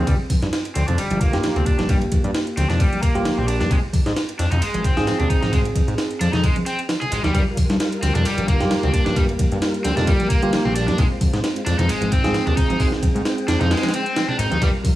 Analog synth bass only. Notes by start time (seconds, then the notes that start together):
0.07 G1
0.43 G2
0.76 D2
0.88 F2
0.99 G1
1.11 G1
1.34 G2
1.56 D2
1.79 G1
2.24 G2
2.57 D2
2.70 F2
3.15 G1
3.38 A#1
3.61 G2
3.71 G#1
4.06 G#2
4.39 F2
4.52 F2
4.62 G#1
4.74 G#1
4.97 G#2
5.20 D#2
5.43 G#1
5.88 G#2
6.21 F2
6.33 F2
7.12 G#1
7.24 D#2
7.35 G1
7.70 G2
8.03 D2
8.15 F2
8.26 G1
8.38 G1
8.61 G2
8.84 D2
9.06 G1
9.52 G2
9.85 D2
9.97 F2
10.42 G1
10.65 A#1
10.88 G2
10.98 G#1
11.34 G#2
11.67 F2
11.79 F2
11.90 G#1
12.02 G#1
12.25 G#2
12.47 D#2
12.70 G#1
13.15 G#2
13.48 F2
13.61 F2
14.39 G#1
14.52 D#2
14.62 G1